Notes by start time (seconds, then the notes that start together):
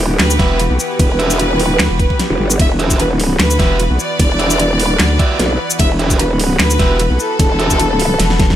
Already playing: D#1 E3 B3 F#4 G4
0.19 D2 B4, snare, clap, closed hi-hat, ride
0.30 shaker
0.39 E1 F#4 G4 E5, kick, snare, closed hi-hat
0.60 closed hi-hat, ride
0.70 B1
0.79 B4, shaker
0.99 E1, kick, closed hi-hat, ride
1.19 F#4 G4 E5, closed hi-hat
1.30 closed hi-hat, shaker
1.40 closed hi-hat, ride
1.54 D#1
1.60 open hi-hat
1.79 D2, snare, clap, closed hi-hat, ride
1.90 E1
1.99 kick, closed hi-hat
2.10 kick
2.20 snare, closed hi-hat, ride
2.30 E1
2.40 G1
2.50 shaker
2.59 E1 B4 E5, kick, closed hi-hat, ride
2.79 F#4 G4 E5, closed hi-hat
2.90 kick, closed hi-hat, shaker
2.99 B4, closed hi-hat, ride
3.20 open hi-hat
3.39 D2 B4, snare, clap, closed hi-hat, ride
3.50 shaker
3.59 E1 F#4 G4 E5, kick, snare, closed hi-hat
3.80 closed hi-hat, ride
3.90 B1
3.99 D5, shaker
4.19 E1, kick, closed hi-hat, ride
4.39 F#4 G4 E5, closed hi-hat
4.50 closed hi-hat, shaker
4.59 closed hi-hat, ride
4.74 D#1
4.79 open hi-hat
5.00 D2, snare, clap, closed hi-hat, ride
5.19 F#4 G4 E5, kick, closed hi-hat
5.39 B1, snare, closed hi-hat, ride
5.70 shaker
5.79 E1 E5, kick, closed hi-hat, ride
5.99 F#4 G4 E5, closed hi-hat
6.10 kick, closed hi-hat, shaker
6.19 B4, closed hi-hat, ride
6.39 open hi-hat
6.59 D2 B4, snare, clap, closed hi-hat, ride
6.70 shaker
6.79 E1 F#4 G4 E5, kick, snare, closed hi-hat
7.00 closed hi-hat, ride
7.10 B1
7.20 A4, shaker
7.39 E1, kick, closed hi-hat, ride
7.59 F#4 G4 E5, closed hi-hat
7.70 kick, closed hi-hat, shaker
7.80 closed hi-hat, ride
8.00 open hi-hat
8.20 E1, snare, closed hi-hat, ride
8.30 snare
8.39 kick, snare, closed hi-hat
8.50 kick, snare